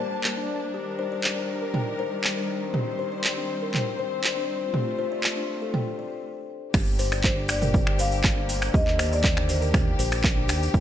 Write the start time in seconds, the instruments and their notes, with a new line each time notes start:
Already playing: string section G3 A#3 D4 A5
0.00 kalimba C5
0.24 kalimba D5, clap
0.37 kalimba D4
0.74 string section D#3 G3 A#4, kalimba G4
0.99 kalimba C5
1.12 kalimba D5
1.24 kalimba D5, clap
1.37 kalimba D4
1.62 kalimba A#4
1.74 kalimba G5, mid tom
1.99 kalimba C5
2.24 kalimba D5, clap
2.37 kalimba D4
2.74 string section C4 C5, kalimba G4, mid tom
2.99 kalimba C5
3.12 kalimba D5
3.24 kalimba D5, clap
3.37 kalimba D4
3.62 kalimba A#4
3.74 kalimba G5, clap, mid tom
3.99 kalimba C5
4.24 kalimba D5, clap
4.37 kalimba D4
4.74 string section A3 F4, kalimba G4, mid tom
4.99 kalimba C5
5.12 kalimba D5
5.24 kalimba D5, clap
5.37 kalimba D4
5.62 kalimba A4
5.74 kalimba G5, mid tom
5.99 kalimba D5
6.74 analog synth bass G1, string section D3 A#3 G4, kalimba G4, finger snap, kick, crash, maracas
6.99 kalimba C5, open hi-hat, maracas
7.12 kalimba D5, finger snap, maracas
7.24 marimba C5, kick, clap, maracas
7.37 kalimba D4
7.49 marimba D5, finger snap, open hi-hat, maracas
7.62 kalimba A#4, mid tom, maracas
7.74 kalimba G5, kick, mid tom, maracas
7.87 finger snap
7.99 kalimba C5, marimba F5, open hi-hat, maracas
8.12 maracas
8.24 kalimba D5, finger snap, kick, clap, maracas
8.37 kalimba D4
8.49 open hi-hat, maracas
8.62 finger snap, maracas
8.74 analog synth bass D#2, kalimba G4, string section G4, marimba D#5, kick, maracas
8.87 clap
8.99 kalimba C5, finger snap, open hi-hat, maracas
9.12 kalimba D5, marimba D5, maracas
9.24 kick, clap, maracas
9.37 kalimba D4, finger snap
9.49 marimba C5, open hi-hat, maracas
9.62 kalimba A#4, maracas
9.74 kalimba G5, finger snap, kick, mid tom, maracas
9.99 analog synth bass A#1, kalimba C5, open hi-hat, maracas
10.12 finger snap, maracas
10.24 kick, clap, maracas
10.37 kalimba D4
10.49 analog synth bass D#2, finger snap, open hi-hat, maracas
10.63 maracas
10.74 analog synth bass C2, string section C3 G3, kalimba G4, kick, maracas